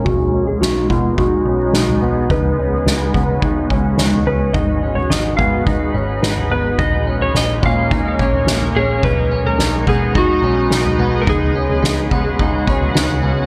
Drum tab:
SD |----o-------o---|----o-------o---|----o-------o---|----o-------o---|
FT |o--o--o-o----o--|o--o--o-o----o--|o--o--o-o----o--|o--o--o-o--o-o--|
BD |o-----o-o-------|o-----o-o-o-----|o-----o-o-------|o-----o-o-o-----|

SD |----o-------o---|----o-------o---|
FT |o--o--o-o----o--|o--o--o-o--o-o--|
BD |o-----o-o-------|o-----o-o-o-----|